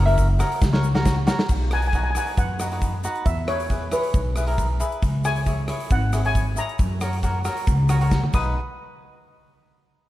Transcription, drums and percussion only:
0.08 closed hi-hat medium
0.18 kick medium
0.18 closed hi-hat medium
0.18 shaker medium
0.40 cross-stick medium
0.40 closed hi-hat medium
0.40 shaker medium
0.52 closed hi-hat medium
0.62 kick loud
0.62 snare medium
0.62 shaker medium
0.74 snare medium
0.83 shaker medium
0.95 snare medium
1.05 kick medium
1.05 snare loud
1.05 shaker medium
1.28 snare loud
1.28 shaker medium
1.39 snare loud
1.49 kick loud
1.49 crash medium
1.49 shaker medium
1.71 cross-stick medium
1.71 closed hi-hat medium
1.82 closed hi-hat medium
1.82 shaker soft
1.92 kick medium
1.92 closed hi-hat medium
1.92 shaker medium
2.15 cross-stick medium
2.15 closed hi-hat medium
2.15 shaker loud
2.27 closed hi-hat medium
2.37 kick loud
2.37 closed hi-hat medium
2.37 shaker medium
2.60 cross-stick medium
2.60 closed hi-hat medium
2.60 shaker loud
2.72 closed hi-hat medium
2.82 kick medium
2.82 closed hi-hat medium
2.82 shaker medium
3.04 closed hi-hat medium
3.04 shaker loud
3.15 closed hi-hat medium
3.26 kick loud
3.26 closed hi-hat medium
3.26 shaker medium
3.48 cross-stick medium
3.48 closed hi-hat medium
3.60 closed hi-hat medium
3.60 shaker soft
3.70 kick medium
3.70 closed hi-hat medium
3.70 shaker medium
3.92 cross-stick medium
3.92 closed hi-hat medium
3.92 shaker loud
4.03 closed hi-hat medium
4.14 kick loud
4.14 closed hi-hat medium
4.14 shaker medium
4.36 cross-stick medium
4.36 closed hi-hat medium
4.36 shaker loud
4.48 closed hi-hat medium
4.58 kick medium
4.58 closed hi-hat medium
4.58 shaker medium
4.80 closed hi-hat medium
4.80 shaker loud
4.92 closed hi-hat medium
5.02 kick loud
5.02 closed hi-hat medium
5.02 shaker medium
5.24 cross-stick medium
5.24 closed hi-hat medium
5.24 shaker medium
5.36 closed hi-hat medium
5.36 shaker soft
5.46 kick medium
5.46 closed hi-hat medium
5.46 shaker medium
5.68 cross-stick medium
5.68 closed hi-hat medium
5.80 closed hi-hat medium
5.90 kick loud
5.90 closed hi-hat medium
5.90 shaker medium
6.13 cross-stick medium
6.13 closed hi-hat medium
6.13 shaker medium
6.25 closed hi-hat medium
6.35 kick medium
6.35 closed hi-hat medium
6.35 shaker medium
6.57 closed hi-hat medium
6.57 shaker loud
6.69 closed hi-hat medium
6.79 kick loud
6.79 closed hi-hat medium
6.79 shaker medium
7.01 cross-stick medium
7.01 closed hi-hat medium
7.01 shaker medium
7.13 closed hi-hat medium
7.23 kick medium
7.23 closed hi-hat medium
7.23 shaker medium
7.45 cross-stick medium
7.45 closed hi-hat medium
7.45 shaker medium
7.57 closed hi-hat medium
7.67 kick loud
7.67 closed hi-hat medium
7.67 shaker medium
7.89 cross-stick medium
7.89 closed hi-hat medium
7.89 shaker medium
8.01 closed hi-hat medium
8.11 kick medium
8.11 snare medium
8.11 shaker medium
8.24 high tom medium
8.33 kick loud
8.33 crash medium
8.33 shaker medium

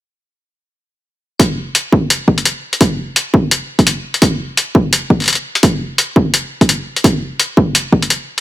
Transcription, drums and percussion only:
1.40 kick loud
1.40 closed hi-hat medium
1.75 closed hi-hat medium
1.93 kick medium
2.10 closed hi-hat medium
2.28 kick medium
2.38 closed hi-hat soft
2.45 closed hi-hat medium
2.73 closed hi-hat soft
2.81 kick loud
2.81 closed hi-hat medium
3.16 closed hi-hat medium
3.34 kick loud
3.51 closed hi-hat medium
3.79 kick medium
3.79 closed hi-hat soft
3.87 closed hi-hat medium
4.14 closed hi-hat soft
4.22 kick loud
4.22 closed hi-hat medium
4.57 closed hi-hat medium
4.75 kick loud
4.93 closed hi-hat medium
5.10 kick medium
5.20 closed hi-hat soft
5.22 closed hi-hat soft
5.24 closed hi-hat soft
5.26 closed hi-hat soft
5.28 closed hi-hat medium
5.30 closed hi-hat soft
5.33 closed hi-hat soft
5.35 closed hi-hat soft
5.55 closed hi-hat soft
5.63 kick loud
5.63 closed hi-hat medium
5.98 closed hi-hat medium
6.16 kick loud
6.34 closed hi-hat medium
6.61 kick medium
6.61 closed hi-hat soft
6.69 closed hi-hat medium
6.96 closed hi-hat soft
7.04 kick loud
7.04 closed hi-hat medium
7.40 closed hi-hat medium
7.57 kick loud
7.75 closed hi-hat medium
7.93 kick medium
8.02 closed hi-hat soft
8.10 closed hi-hat medium

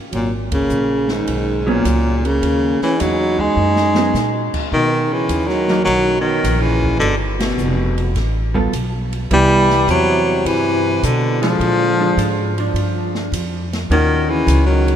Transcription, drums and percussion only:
0.13 ride medium
0.52 kick medium
0.52 ride medium
0.70 hi-hat pedal medium
1.08 snare soft
1.27 ride medium
1.85 hi-hat pedal medium
1.85 ride medium
2.25 ride soft
2.43 ride medium
2.82 snare soft
3.00 hi-hat pedal medium
3.00 ride medium
3.39 kick soft
3.76 snare medium
3.95 snare medium
4.15 snare medium
4.15 hi-hat pedal medium
4.54 kick medium
4.54 crash medium
5.29 hi-hat pedal medium
5.29 ride medium
5.49 snare soft
5.68 snare soft
5.87 ride medium
6.44 hi-hat pedal medium
6.44 ride medium
6.83 kick medium
7.01 ride medium
7.40 snare medium
7.40 ride medium
7.58 hi-hat pedal medium
7.98 ride soft
8.16 snare soft
8.16 ride medium
8.55 kick medium
8.73 hi-hat pedal medium
8.73 ride medium
9.13 ride soft
9.31 ride medium
9.70 snare medium
9.89 hi-hat pedal medium
9.89 ride medium
10.46 ride medium
11.03 hi-hat pedal medium
11.03 ride medium
11.43 snare soft
11.43 ride soft
11.61 ride medium
12.19 hi-hat pedal medium
12.19 ride medium
12.58 ride soft
12.76 ride medium
13.15 snare soft
13.33 hi-hat pedal medium
13.33 ride medium
13.73 snare medium
13.73 ride medium
13.91 ride medium
14.48 hi-hat pedal medium
14.48 ride medium
14.88 ride soft

